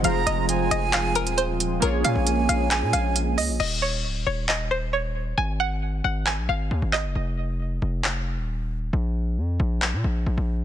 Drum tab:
CC |----------------|----------------|x---------------|----------------|
HH |x-x-x-x-x-xxx-x-|x-x-x-x-x-x-x-o-|----------------|----------------|
CP |--------x-------|--------x-------|--------x-------|--------x-----x-|

CC |----------------|----------------|
HH |----------------|----------------|
CP |--------x-------|--------x-------|